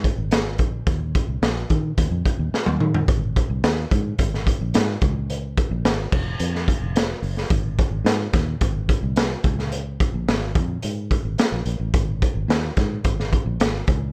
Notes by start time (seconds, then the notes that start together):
0.04 kick, closed hi-hat
0.18 G#1
0.31 snare, closed hi-hat
0.58 A#1, kick, closed hi-hat
0.87 D#2, kick, closed hi-hat
1.15 kick, closed hi-hat
1.28 C2
1.42 A#1, snare, closed hi-hat
1.70 D#3, kick, closed hi-hat
1.97 D#2, kick, closed hi-hat
2.11 F2
2.25 kick, closed hi-hat
2.39 D#2
2.53 muted fingered electric bass stroke, snare
2.66 D#2, high tom
2.80 D#3, mid tom
2.94 floor tom
3.08 G#1, kick, closed hi-hat
3.36 kick, closed hi-hat
3.50 C2
3.64 D#2, snare, closed hi-hat
3.91 G#2, kick, closed hi-hat
4.19 G#1, kick, closed hi-hat
4.34 snare
4.47 kick, closed hi-hat
4.61 A#1
4.74 G#2, snare, closed hi-hat
5.01 C#2, kick, closed hi-hat
5.30 closed hi-hat
5.57 kick, closed hi-hat
5.71 A#1
5.85 G#1, snare, closed hi-hat
6.12 F1, kick, crash
6.39 F2, closed hi-hat
6.55 snare
6.68 kick, closed hi-hat
6.82 F1
6.96 snare, closed hi-hat
7.22 F#1, open hi-hat
7.37 snare
7.50 G#1, kick, closed hi-hat
7.79 kick, closed hi-hat
7.91 G#1
8.04 G#2, snare, closed hi-hat
8.33 D#2, kick, snare, closed hi-hat
8.61 G#1, kick, closed hi-hat
8.89 kick, closed hi-hat
9.03 C2
9.16 snare, closed hi-hat
9.44 C#2, kick, closed hi-hat
9.59 snare
9.72 closed hi-hat
10.00 kick, closed hi-hat
10.14 A#1
10.28 G#1, snare, closed hi-hat
10.55 F2, kick, closed hi-hat
10.82 G#2, closed hi-hat
11.11 kick, closed hi-hat
11.25 G#1
11.38 snare, closed hi-hat
11.52 A#1
11.66 A#1, closed hi-hat
11.80 A1
11.94 G#1, kick, closed hi-hat
12.22 kick, closed hi-hat
12.35 G#1
12.48 D#2, snare, closed hi-hat
12.77 G#2, kick, snare, closed hi-hat
13.04 G#1, kick, closed hi-hat
13.20 snare
13.33 kick, closed hi-hat
13.46 A#1
13.60 G#1, snare, closed hi-hat
13.87 C#2, kick, closed hi-hat